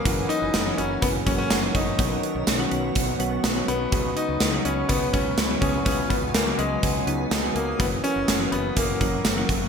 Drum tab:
HH |xxxxxxxx|xxxxxxxx|xxxxxxxx|xxxxxxxx|
TB |--x---x-|--x---x-|--x---x-|--x---x-|
SD |--o---o-|--o---o-|--o---o-|--o---o-|
BD |o---oo-o|o---o---|o---oo-o|oo--o---|

HH |xxxxxxxx|
TB |--x---x-|
SD |--o---o-|
BD |o---oo-o|